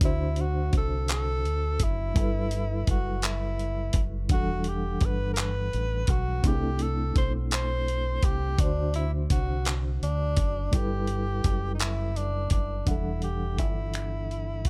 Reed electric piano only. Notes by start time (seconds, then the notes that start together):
0.00 D3 D4 F#4
0.05 C5
2.14 G3 E4
2.18 A4 B4
4.28 E3 D4 F#5
4.33 G3 A4
6.42 A3 C4 D4
6.47 E4 G#4
6.55 A4
8.57 D3 D4
8.61 F#4 C5
10.71 G3 E4
10.75 A4 B4
12.85 E3 D4 F#5
12.89 G3 A4